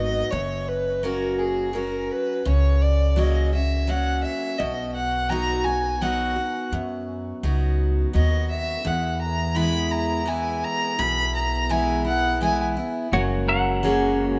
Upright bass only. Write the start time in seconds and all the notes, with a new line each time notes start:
Already playing: G#1
0.33 F#1
2.46 C#2
4.60 B1
6.72 F#2
7.43 C#2
8.15 D#2
8.85 E2
10.99 B1
13.12 F#1